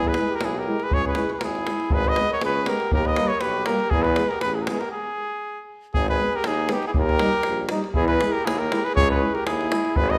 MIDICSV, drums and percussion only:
0, 0, Header, 1, 2, 480
1, 0, Start_track
1, 0, Key_signature, 5, "minor"
1, 0, Tempo, 502513
1, 872, Time_signature, 2, 2, 24, 8
1, 9726, End_track
2, 0, Start_track
2, 0, Title_t, "Davul"
2, 41, Note_on_c, 9, 37, 24
2, 135, Note_off_c, 9, 37, 0
2, 135, Note_on_c, 9, 37, 66
2, 230, Note_off_c, 9, 37, 0
2, 269, Note_on_c, 9, 37, 23
2, 365, Note_off_c, 9, 37, 0
2, 388, Note_on_c, 9, 37, 74
2, 483, Note_off_c, 9, 37, 0
2, 761, Note_on_c, 9, 37, 29
2, 856, Note_off_c, 9, 37, 0
2, 872, Note_on_c, 9, 43, 100
2, 968, Note_off_c, 9, 43, 0
2, 1007, Note_on_c, 9, 37, 23
2, 1098, Note_off_c, 9, 37, 0
2, 1098, Note_on_c, 9, 37, 67
2, 1193, Note_off_c, 9, 37, 0
2, 1238, Note_on_c, 9, 37, 26
2, 1334, Note_off_c, 9, 37, 0
2, 1345, Note_on_c, 9, 37, 73
2, 1441, Note_off_c, 9, 37, 0
2, 1482, Note_on_c, 9, 37, 28
2, 1578, Note_off_c, 9, 37, 0
2, 1591, Note_on_c, 9, 37, 68
2, 1687, Note_off_c, 9, 37, 0
2, 1717, Note_on_c, 9, 37, 30
2, 1813, Note_off_c, 9, 37, 0
2, 1817, Note_on_c, 9, 43, 107
2, 1913, Note_off_c, 9, 43, 0
2, 1954, Note_on_c, 9, 37, 27
2, 2049, Note_off_c, 9, 37, 0
2, 2065, Note_on_c, 9, 37, 68
2, 2160, Note_off_c, 9, 37, 0
2, 2188, Note_on_c, 9, 37, 23
2, 2283, Note_off_c, 9, 37, 0
2, 2306, Note_on_c, 9, 37, 73
2, 2402, Note_off_c, 9, 37, 0
2, 2544, Note_on_c, 9, 37, 72
2, 2639, Note_off_c, 9, 37, 0
2, 2674, Note_on_c, 9, 37, 29
2, 2769, Note_off_c, 9, 37, 0
2, 2785, Note_on_c, 9, 43, 100
2, 2880, Note_off_c, 9, 43, 0
2, 2914, Note_on_c, 9, 37, 26
2, 3010, Note_off_c, 9, 37, 0
2, 3022, Note_on_c, 9, 37, 73
2, 3118, Note_off_c, 9, 37, 0
2, 3152, Note_on_c, 9, 37, 24
2, 3247, Note_off_c, 9, 37, 0
2, 3254, Note_on_c, 9, 37, 69
2, 3349, Note_off_c, 9, 37, 0
2, 3493, Note_on_c, 9, 37, 78
2, 3588, Note_off_c, 9, 37, 0
2, 3629, Note_on_c, 9, 37, 30
2, 3724, Note_off_c, 9, 37, 0
2, 3735, Note_on_c, 9, 43, 102
2, 3831, Note_off_c, 9, 43, 0
2, 3863, Note_on_c, 9, 37, 27
2, 3959, Note_off_c, 9, 37, 0
2, 3975, Note_on_c, 9, 37, 72
2, 4071, Note_off_c, 9, 37, 0
2, 4115, Note_on_c, 9, 37, 25
2, 4210, Note_off_c, 9, 37, 0
2, 4215, Note_on_c, 9, 37, 71
2, 4311, Note_off_c, 9, 37, 0
2, 4461, Note_on_c, 9, 37, 76
2, 4556, Note_off_c, 9, 37, 0
2, 4592, Note_on_c, 9, 37, 31
2, 4687, Note_off_c, 9, 37, 0
2, 5676, Note_on_c, 9, 43, 97
2, 5771, Note_off_c, 9, 43, 0
2, 5808, Note_on_c, 9, 37, 25
2, 5903, Note_off_c, 9, 37, 0
2, 6044, Note_on_c, 9, 37, 25
2, 6139, Note_off_c, 9, 37, 0
2, 6152, Note_on_c, 9, 37, 78
2, 6247, Note_off_c, 9, 37, 0
2, 6388, Note_on_c, 9, 37, 69
2, 6483, Note_off_c, 9, 37, 0
2, 6522, Note_on_c, 9, 37, 33
2, 6617, Note_off_c, 9, 37, 0
2, 6632, Note_on_c, 9, 43, 110
2, 6727, Note_off_c, 9, 43, 0
2, 6774, Note_on_c, 9, 37, 26
2, 6869, Note_off_c, 9, 37, 0
2, 6872, Note_on_c, 9, 37, 75
2, 6967, Note_off_c, 9, 37, 0
2, 6999, Note_on_c, 9, 37, 27
2, 7095, Note_off_c, 9, 37, 0
2, 7100, Note_on_c, 9, 37, 68
2, 7196, Note_off_c, 9, 37, 0
2, 7342, Note_on_c, 9, 37, 78
2, 7438, Note_off_c, 9, 37, 0
2, 7488, Note_on_c, 9, 37, 28
2, 7583, Note_off_c, 9, 37, 0
2, 7584, Note_on_c, 9, 43, 94
2, 7680, Note_off_c, 9, 43, 0
2, 7716, Note_on_c, 9, 37, 28
2, 7812, Note_off_c, 9, 37, 0
2, 7838, Note_on_c, 9, 37, 71
2, 7934, Note_off_c, 9, 37, 0
2, 7972, Note_on_c, 9, 37, 22
2, 8068, Note_off_c, 9, 37, 0
2, 8094, Note_on_c, 9, 37, 81
2, 8189, Note_off_c, 9, 37, 0
2, 8328, Note_on_c, 9, 37, 74
2, 8424, Note_off_c, 9, 37, 0
2, 8467, Note_on_c, 9, 37, 31
2, 8562, Note_off_c, 9, 37, 0
2, 8567, Note_on_c, 9, 43, 107
2, 8662, Note_off_c, 9, 43, 0
2, 8929, Note_on_c, 9, 37, 27
2, 9024, Note_off_c, 9, 37, 0
2, 9042, Note_on_c, 9, 37, 79
2, 9137, Note_off_c, 9, 37, 0
2, 9176, Note_on_c, 9, 37, 28
2, 9272, Note_off_c, 9, 37, 0
2, 9281, Note_on_c, 9, 37, 78
2, 9377, Note_off_c, 9, 37, 0
2, 9407, Note_on_c, 9, 37, 31
2, 9502, Note_off_c, 9, 37, 0
2, 9513, Note_on_c, 9, 43, 100
2, 9609, Note_off_c, 9, 43, 0
2, 9647, Note_on_c, 9, 37, 27
2, 9726, Note_off_c, 9, 37, 0
2, 9726, End_track
0, 0, End_of_file